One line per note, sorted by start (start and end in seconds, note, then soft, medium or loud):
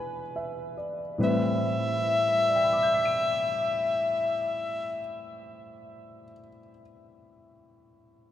0.00 1.16 E2 medium
0.00 1.17 E3 soft
0.00 1.19 G#3 soft
0.00 1.20 D4 soft
0.00 1.19 B4 medium
0.00 0.74 G#5 soft
0.00 0.20 B5 soft
0.36 1.01 E5 soft
0.77 1.44 D5 soft
1.18 4.98 A2 medium
1.18 4.99 E3 soft
1.18 4.99 G3 soft
1.18 5.00 C4 soft
1.18 5.01 B4 medium
1.23 4.99 E5 medium
2.48 6.24 D5 soft
2.56 6.32 G5 soft
2.64 6.39 B5 soft
2.73 6.49 D6 soft
2.83 6.59 G6 soft
2.93 6.69 B6 soft
3.05 6.81 D7 soft